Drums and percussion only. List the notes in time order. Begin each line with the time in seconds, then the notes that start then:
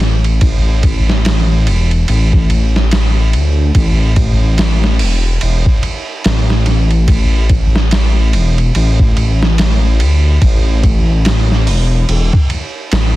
0.00 snare, ride
0.24 ride
0.41 kick, ride
0.83 kick, ride
1.09 snare
1.25 snare, ride
1.67 ride
1.91 ride
2.08 ride
2.33 kick
2.50 ride
2.76 snare
2.91 snare, ride
3.33 ride
3.75 kick, ride
4.16 kick, ride
4.58 snare, ride
4.84 snare
4.99 open hi-hat
5.41 ride
5.66 kick
5.83 ride
6.24 snare, ride
6.50 snare
6.66 snare, ride
6.91 ride
7.08 kick, ride
7.50 kick, ride
7.76 snare
7.91 snare, ride
8.33 ride
8.58 ride
8.75 ride
9.00 kick
9.17 ride
9.43 snare
9.58 snare, ride
10.00 ride
10.42 kick, ride
10.83 kick, ride
11.25 snare, ride
11.52 snare
11.67 open hi-hat
12.09 ride
12.33 kick
12.50 ride
12.92 snare, ride